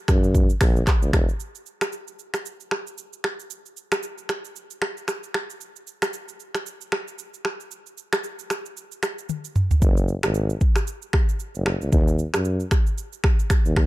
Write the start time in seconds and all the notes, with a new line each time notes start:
0.08 F#2, finger snap, kick, cross-stick, shaker
0.24 shaker
0.35 kick, shaker
0.50 shaker
0.61 A#1, finger snap, kick, cross-stick, open hi-hat, shaker
0.76 shaker
0.87 finger snap, kick, cross-stick, clap, shaker
1.02 C#2, shaker
1.13 E1, finger snap, kick, cross-stick, shaker
1.29 shaker
1.40 shaker
1.55 shaker
1.66 shaker
1.81 finger snap, cross-stick, shaker
1.92 shaker
2.08 shaker
2.19 shaker
2.34 finger snap, cross-stick, shaker
2.46 shaker
2.60 shaker
2.71 finger snap, cross-stick
2.87 shaker
2.98 shaker
3.13 shaker
3.24 finger snap, cross-stick
3.39 shaker
3.50 shaker
3.66 shaker
3.77 shaker
3.92 finger snap, cross-stick, shaker
4.03 shaker
4.18 shaker
4.29 finger snap, cross-stick, shaker
4.45 shaker
4.56 shaker
4.71 shaker
4.82 finger snap, cross-stick
4.97 shaker
5.08 finger snap, cross-stick, shaker
5.23 shaker
5.34 finger snap, cross-stick
5.50 shaker
5.61 shaker
5.76 shaker
5.87 shaker
6.02 finger snap, cross-stick, shaker
6.13 shaker
6.28 shaker
6.40 shaker
6.55 finger snap, cross-stick, shaker
6.66 shaker
6.81 shaker
6.92 finger snap, cross-stick
7.08 shaker
7.18 shaker
7.34 shaker
7.45 finger snap, cross-stick
7.60 shaker
7.71 shaker
7.86 shaker
7.97 shaker
8.13 finger snap, cross-stick, shaker
8.24 shaker
8.39 shaker
8.50 finger snap, cross-stick, shaker
8.66 shaker
8.77 shaker
8.92 shaker
9.03 finger snap, cross-stick, shaker
9.18 shaker
9.29 high tom, shaker
9.45 shaker
9.56 mid tom, shaker
9.71 floor tom, shaker
9.82 F#1, kick, shaker
9.97 shaker
10.08 shaker
10.23 G#1, finger snap, cross-stick, shaker
10.34 shaker
10.50 shaker
10.61 kick, shaker
10.76 finger snap, cross-stick, shaker
10.87 shaker
11.02 shaker
11.13 finger snap, kick, cross-stick
11.29 shaker
11.40 shaker
11.55 F#1, shaker
11.66 finger snap, cross-stick
11.81 C#2, shaker
11.92 D#2, kick, shaker
12.08 shaker
12.19 shaker
12.34 F#2, finger snap, cross-stick, shaker
12.45 shaker
12.60 shaker
12.71 finger snap, kick, cross-stick, shaker
12.87 shaker
12.98 shaker
13.13 shaker
13.24 finger snap, kick, cross-stick
13.39 shaker
13.50 finger snap, kick, cross-stick, shaker
13.66 D#2, shaker
13.76 finger snap, kick, cross-stick